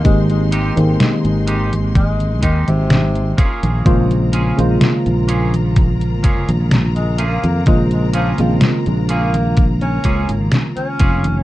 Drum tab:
HH |xxxxxxxxxxxxxxxx|xxxxxxxxxxxxxxxx|xxxxxxxxxxxxxxxx|
SD |----o-------o---|----o-------o---|----o-------o---|
CG |oo-ooo-ooo-ooo-o|oo-ooo-ooo-ooo-o|oo-ooo-ooo-ooo-o|
BD |o-------o-o---o-|o-------o-o-----|o-------o-o---o-|